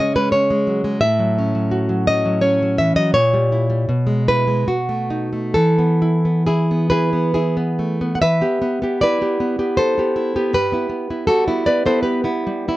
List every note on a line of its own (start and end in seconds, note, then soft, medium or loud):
0.00 0.97 C#3 medium
0.00 0.14 G#3 medium
0.00 0.32 C#4 medium
0.00 0.67 G#4 medium
0.00 0.15 D#5 loud
0.16 0.49 G#3 soft
0.16 0.32 B4 medium
0.32 1.01 C#4 medium
0.32 0.98 C#5 medium
0.50 0.83 G#3 medium
0.67 1.01 F#3 soft
0.84 1.01 G#3 medium
1.01 2.96 A2 medium
1.01 2.03 E5 loud
1.19 1.54 F#3 medium
1.38 2.06 C#4 medium
1.55 1.88 F#3 medium
1.71 2.78 F#4 medium
1.89 2.24 F#3 medium
2.07 2.41 C#4 medium
2.07 2.41 D#5 loud
2.26 2.61 F#3 medium
2.41 3.14 C#4 medium
2.41 2.76 C#5 loud
2.62 2.79 F#3 medium
2.78 3.14 E3 soft
2.78 2.96 E5 loud
2.96 3.14 F#3 medium
2.96 3.14 D#5 loud
3.14 3.86 A#2 medium
3.14 4.23 C#5 loud
3.34 3.69 G3 medium
3.52 3.89 E4 medium
3.70 3.88 G3 soft
3.89 4.66 B2 medium
4.07 4.46 G#3 soft
4.28 4.67 E4 medium
4.28 4.67 B4 loud
4.48 4.68 G#3 medium
4.68 5.53 B2 medium
4.68 5.52 F#4 medium
4.89 5.31 A3 soft
5.10 5.55 D#4 soft
5.33 5.55 A3 medium
5.54 8.16 E3 medium
5.54 6.42 A4 loud
5.79 6.24 B3 soft
6.02 6.46 E4 medium
6.25 6.46 B3 soft
6.47 6.89 E4 medium
6.47 6.90 G#4 medium
6.71 7.12 B3 soft
6.90 7.34 E4 soft
6.90 7.31 G#4 medium
6.90 7.31 B4 medium
7.13 7.56 B3 soft
7.34 8.09 E4 medium
7.34 8.09 G#4 medium
7.57 8.00 B3 soft
7.79 8.21 A3 soft
8.01 8.21 B3 soft
8.15 8.21 F#5 medium
8.22 8.41 E3 medium
8.22 8.97 B4 medium
8.22 8.97 E5 loud
8.41 8.60 B3 medium
8.41 8.82 G4 medium
8.62 8.81 B3 medium
8.82 9.20 B3 medium
8.82 9.21 G4 medium
9.01 10.15 E4 medium
9.01 9.75 B4 medium
9.01 9.75 D5 loud
9.21 9.39 B3 medium
9.21 9.58 G4 medium
9.40 9.58 B3 medium
9.59 9.97 B3 soft
9.59 9.98 G4 medium
9.77 10.52 A4 medium
9.77 10.52 C5 loud
9.98 10.35 B3 medium
9.98 10.35 G4 medium
10.16 10.55 E4 medium
10.36 10.53 B3 medium
10.36 10.53 G4 medium
10.53 10.72 G2 medium
10.53 11.25 G4 medium
10.53 11.26 B4 loud
10.72 10.88 B3 medium
10.72 11.09 E4 medium
10.89 11.09 B3 medium
11.10 11.47 B3 soft
11.10 11.28 E4 medium
11.27 12.46 G3 medium
11.27 11.64 F#4 medium
11.27 11.47 A4 loud
11.48 11.65 B3 medium
11.48 11.85 E4 medium
11.66 11.85 B3 medium
11.66 11.85 B4 medium
11.66 11.86 D5 loud
11.86 12.23 B3 medium
11.86 12.24 E4 medium
11.86 12.03 A4 medium
11.86 12.02 C5 medium
12.03 12.77 G4 medium
12.03 12.24 B4 medium
12.24 12.67 B3 medium
12.24 12.67 E4 medium
12.47 12.77 G3 medium
12.68 12.77 B3 medium
12.68 12.77 E4 medium